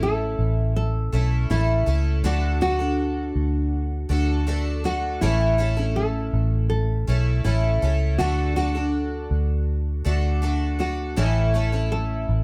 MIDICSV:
0, 0, Header, 1, 4, 480
1, 0, Start_track
1, 0, Key_signature, 3, "major"
1, 0, Tempo, 744417
1, 1447, Time_signature, 4, 2, 24, 8
1, 8018, End_track
2, 0, Start_track
2, 0, Title_t, "Nylon-string guitar"
2, 0, Program_c, 0, 24
2, 17, Note_on_c, 0, 69, 83
2, 485, Note_off_c, 0, 69, 0
2, 492, Note_on_c, 0, 69, 81
2, 984, Note_off_c, 0, 69, 0
2, 3843, Note_on_c, 0, 69, 79
2, 4310, Note_off_c, 0, 69, 0
2, 4317, Note_on_c, 0, 69, 82
2, 4815, Note_off_c, 0, 69, 0
2, 7685, Note_on_c, 0, 69, 80
2, 8018, Note_off_c, 0, 69, 0
2, 8018, End_track
3, 0, Start_track
3, 0, Title_t, "Twelve-string acoustic guitar"
3, 0, Program_c, 1, 25
3, 0, Note_on_c, 1, 57, 40
3, 0, Note_on_c, 1, 61, 43
3, 0, Note_on_c, 1, 64, 47
3, 0, Note_on_c, 1, 69, 51
3, 723, Note_off_c, 1, 57, 0
3, 723, Note_off_c, 1, 61, 0
3, 726, Note_off_c, 1, 64, 0
3, 726, Note_on_c, 1, 57, 49
3, 730, Note_on_c, 1, 61, 57
3, 733, Note_on_c, 1, 64, 58
3, 736, Note_off_c, 1, 69, 0
3, 738, Note_on_c, 1, 69, 52
3, 958, Note_off_c, 1, 57, 0
3, 962, Note_off_c, 1, 61, 0
3, 966, Note_on_c, 1, 57, 54
3, 967, Note_off_c, 1, 64, 0
3, 970, Note_on_c, 1, 61, 51
3, 971, Note_off_c, 1, 69, 0
3, 974, Note_on_c, 1, 64, 53
3, 979, Note_on_c, 1, 69, 60
3, 1193, Note_off_c, 1, 57, 0
3, 1198, Note_off_c, 1, 61, 0
3, 1201, Note_on_c, 1, 57, 53
3, 1202, Note_off_c, 1, 64, 0
3, 1204, Note_off_c, 1, 69, 0
3, 1206, Note_on_c, 1, 61, 48
3, 1209, Note_on_c, 1, 64, 49
3, 1212, Note_on_c, 1, 69, 55
3, 1437, Note_off_c, 1, 57, 0
3, 1443, Note_on_c, 1, 50, 69
3, 1444, Note_off_c, 1, 69, 0
3, 1445, Note_on_c, 1, 57, 67
3, 1446, Note_off_c, 1, 61, 0
3, 1447, Note_off_c, 1, 64, 0
3, 1449, Note_on_c, 1, 62, 70
3, 1450, Note_on_c, 1, 66, 71
3, 1452, Note_on_c, 1, 69, 72
3, 1676, Note_off_c, 1, 57, 0
3, 1679, Note_off_c, 1, 62, 0
3, 1683, Note_off_c, 1, 66, 0
3, 1683, Note_on_c, 1, 57, 57
3, 1685, Note_off_c, 1, 50, 0
3, 1687, Note_on_c, 1, 62, 54
3, 1689, Note_off_c, 1, 69, 0
3, 1690, Note_on_c, 1, 66, 61
3, 1696, Note_on_c, 1, 69, 62
3, 1791, Note_off_c, 1, 69, 0
3, 1798, Note_off_c, 1, 66, 0
3, 1799, Note_on_c, 1, 69, 46
3, 1805, Note_off_c, 1, 57, 0
3, 1805, Note_off_c, 1, 62, 0
3, 1806, Note_on_c, 1, 66, 48
3, 1812, Note_on_c, 1, 62, 42
3, 2634, Note_off_c, 1, 62, 0
3, 2637, Note_on_c, 1, 57, 60
3, 2639, Note_off_c, 1, 66, 0
3, 2642, Note_on_c, 1, 62, 61
3, 2647, Note_on_c, 1, 66, 60
3, 2649, Note_off_c, 1, 69, 0
3, 2651, Note_on_c, 1, 69, 62
3, 2873, Note_off_c, 1, 57, 0
3, 2876, Note_off_c, 1, 62, 0
3, 2880, Note_off_c, 1, 66, 0
3, 2881, Note_on_c, 1, 57, 63
3, 2884, Note_on_c, 1, 62, 56
3, 2886, Note_off_c, 1, 69, 0
3, 2888, Note_on_c, 1, 66, 64
3, 2894, Note_on_c, 1, 69, 68
3, 3113, Note_off_c, 1, 57, 0
3, 3121, Note_off_c, 1, 62, 0
3, 3121, Note_on_c, 1, 57, 51
3, 3123, Note_off_c, 1, 66, 0
3, 3128, Note_off_c, 1, 69, 0
3, 3129, Note_on_c, 1, 62, 48
3, 3131, Note_on_c, 1, 66, 55
3, 3136, Note_on_c, 1, 69, 52
3, 3359, Note_off_c, 1, 57, 0
3, 3363, Note_off_c, 1, 69, 0
3, 3364, Note_on_c, 1, 45, 67
3, 3365, Note_on_c, 1, 52, 66
3, 3367, Note_off_c, 1, 62, 0
3, 3367, Note_on_c, 1, 57, 63
3, 3368, Note_off_c, 1, 66, 0
3, 3370, Note_on_c, 1, 61, 76
3, 3371, Note_on_c, 1, 64, 74
3, 3371, Note_on_c, 1, 69, 73
3, 3591, Note_off_c, 1, 57, 0
3, 3595, Note_off_c, 1, 61, 0
3, 3597, Note_off_c, 1, 64, 0
3, 3599, Note_on_c, 1, 57, 51
3, 3603, Note_off_c, 1, 69, 0
3, 3603, Note_on_c, 1, 61, 54
3, 3604, Note_off_c, 1, 45, 0
3, 3605, Note_off_c, 1, 52, 0
3, 3605, Note_on_c, 1, 64, 52
3, 3611, Note_on_c, 1, 69, 68
3, 3710, Note_off_c, 1, 69, 0
3, 3714, Note_off_c, 1, 64, 0
3, 3718, Note_on_c, 1, 69, 49
3, 3721, Note_off_c, 1, 61, 0
3, 3722, Note_off_c, 1, 57, 0
3, 3722, Note_on_c, 1, 64, 49
3, 3729, Note_on_c, 1, 61, 43
3, 3731, Note_on_c, 1, 57, 38
3, 4558, Note_off_c, 1, 61, 0
3, 4559, Note_off_c, 1, 57, 0
3, 4561, Note_on_c, 1, 57, 57
3, 4563, Note_off_c, 1, 64, 0
3, 4566, Note_on_c, 1, 61, 54
3, 4570, Note_on_c, 1, 64, 57
3, 4572, Note_off_c, 1, 69, 0
3, 4575, Note_on_c, 1, 69, 60
3, 4792, Note_off_c, 1, 57, 0
3, 4797, Note_off_c, 1, 61, 0
3, 4799, Note_on_c, 1, 57, 53
3, 4802, Note_off_c, 1, 64, 0
3, 4805, Note_off_c, 1, 69, 0
3, 4805, Note_on_c, 1, 61, 56
3, 4810, Note_on_c, 1, 64, 57
3, 4812, Note_on_c, 1, 69, 61
3, 5035, Note_off_c, 1, 57, 0
3, 5039, Note_off_c, 1, 61, 0
3, 5043, Note_off_c, 1, 64, 0
3, 5043, Note_on_c, 1, 57, 49
3, 5047, Note_on_c, 1, 61, 51
3, 5048, Note_off_c, 1, 69, 0
3, 5051, Note_on_c, 1, 64, 47
3, 5057, Note_on_c, 1, 69, 57
3, 5279, Note_off_c, 1, 57, 0
3, 5283, Note_on_c, 1, 50, 65
3, 5285, Note_off_c, 1, 69, 0
3, 5286, Note_off_c, 1, 61, 0
3, 5287, Note_on_c, 1, 57, 67
3, 5288, Note_off_c, 1, 64, 0
3, 5289, Note_on_c, 1, 62, 67
3, 5292, Note_on_c, 1, 66, 73
3, 5292, Note_on_c, 1, 69, 69
3, 5512, Note_off_c, 1, 57, 0
3, 5517, Note_off_c, 1, 62, 0
3, 5520, Note_on_c, 1, 57, 59
3, 5521, Note_off_c, 1, 66, 0
3, 5524, Note_off_c, 1, 50, 0
3, 5525, Note_on_c, 1, 62, 62
3, 5526, Note_off_c, 1, 69, 0
3, 5529, Note_on_c, 1, 66, 58
3, 5534, Note_on_c, 1, 69, 56
3, 5632, Note_off_c, 1, 69, 0
3, 5639, Note_off_c, 1, 66, 0
3, 5640, Note_on_c, 1, 69, 45
3, 5642, Note_off_c, 1, 57, 0
3, 5644, Note_off_c, 1, 62, 0
3, 5647, Note_on_c, 1, 66, 42
3, 5654, Note_on_c, 1, 62, 40
3, 6474, Note_off_c, 1, 62, 0
3, 6477, Note_on_c, 1, 57, 56
3, 6479, Note_off_c, 1, 66, 0
3, 6482, Note_on_c, 1, 62, 61
3, 6486, Note_on_c, 1, 66, 63
3, 6488, Note_off_c, 1, 69, 0
3, 6490, Note_on_c, 1, 69, 68
3, 6710, Note_off_c, 1, 57, 0
3, 6717, Note_off_c, 1, 62, 0
3, 6717, Note_on_c, 1, 57, 55
3, 6721, Note_off_c, 1, 66, 0
3, 6723, Note_off_c, 1, 69, 0
3, 6724, Note_on_c, 1, 62, 59
3, 6729, Note_on_c, 1, 66, 58
3, 6730, Note_on_c, 1, 69, 60
3, 6948, Note_off_c, 1, 57, 0
3, 6952, Note_off_c, 1, 62, 0
3, 6956, Note_on_c, 1, 57, 49
3, 6958, Note_off_c, 1, 66, 0
3, 6960, Note_on_c, 1, 62, 48
3, 6961, Note_off_c, 1, 69, 0
3, 6965, Note_on_c, 1, 66, 50
3, 6969, Note_on_c, 1, 69, 53
3, 7196, Note_off_c, 1, 57, 0
3, 7199, Note_on_c, 1, 45, 69
3, 7202, Note_off_c, 1, 62, 0
3, 7202, Note_off_c, 1, 69, 0
3, 7203, Note_on_c, 1, 52, 69
3, 7204, Note_off_c, 1, 66, 0
3, 7204, Note_on_c, 1, 57, 64
3, 7205, Note_on_c, 1, 61, 65
3, 7207, Note_on_c, 1, 64, 73
3, 7210, Note_on_c, 1, 69, 66
3, 7433, Note_off_c, 1, 57, 0
3, 7438, Note_off_c, 1, 61, 0
3, 7440, Note_on_c, 1, 57, 54
3, 7441, Note_off_c, 1, 64, 0
3, 7442, Note_off_c, 1, 45, 0
3, 7444, Note_off_c, 1, 52, 0
3, 7445, Note_on_c, 1, 61, 58
3, 7447, Note_off_c, 1, 69, 0
3, 7449, Note_on_c, 1, 64, 51
3, 7454, Note_on_c, 1, 69, 58
3, 7551, Note_off_c, 1, 69, 0
3, 7557, Note_off_c, 1, 64, 0
3, 7559, Note_on_c, 1, 69, 47
3, 7561, Note_off_c, 1, 61, 0
3, 7562, Note_off_c, 1, 57, 0
3, 7564, Note_on_c, 1, 64, 49
3, 7568, Note_on_c, 1, 61, 42
3, 7573, Note_on_c, 1, 57, 39
3, 8018, Note_off_c, 1, 57, 0
3, 8018, Note_off_c, 1, 61, 0
3, 8018, Note_off_c, 1, 64, 0
3, 8018, Note_off_c, 1, 69, 0
3, 8018, End_track
4, 0, Start_track
4, 0, Title_t, "Fingered electric bass"
4, 0, Program_c, 2, 33
4, 0, Note_on_c, 2, 33, 85
4, 223, Note_off_c, 2, 33, 0
4, 249, Note_on_c, 2, 33, 80
4, 702, Note_off_c, 2, 33, 0
4, 729, Note_on_c, 2, 35, 75
4, 949, Note_off_c, 2, 35, 0
4, 969, Note_on_c, 2, 33, 72
4, 1189, Note_off_c, 2, 33, 0
4, 1206, Note_on_c, 2, 37, 75
4, 1427, Note_off_c, 2, 37, 0
4, 1443, Note_on_c, 2, 38, 91
4, 2139, Note_off_c, 2, 38, 0
4, 2163, Note_on_c, 2, 38, 81
4, 2619, Note_off_c, 2, 38, 0
4, 2641, Note_on_c, 2, 38, 86
4, 3337, Note_off_c, 2, 38, 0
4, 3368, Note_on_c, 2, 33, 92
4, 4060, Note_off_c, 2, 33, 0
4, 4084, Note_on_c, 2, 33, 87
4, 4538, Note_off_c, 2, 33, 0
4, 4566, Note_on_c, 2, 35, 79
4, 4786, Note_off_c, 2, 35, 0
4, 4805, Note_on_c, 2, 33, 69
4, 5025, Note_off_c, 2, 33, 0
4, 5046, Note_on_c, 2, 37, 76
4, 5266, Note_off_c, 2, 37, 0
4, 5286, Note_on_c, 2, 38, 87
4, 5979, Note_off_c, 2, 38, 0
4, 6002, Note_on_c, 2, 38, 80
4, 6457, Note_off_c, 2, 38, 0
4, 6486, Note_on_c, 2, 38, 86
4, 7179, Note_off_c, 2, 38, 0
4, 7206, Note_on_c, 2, 33, 82
4, 7899, Note_off_c, 2, 33, 0
4, 7924, Note_on_c, 2, 33, 82
4, 8018, Note_off_c, 2, 33, 0
4, 8018, End_track
0, 0, End_of_file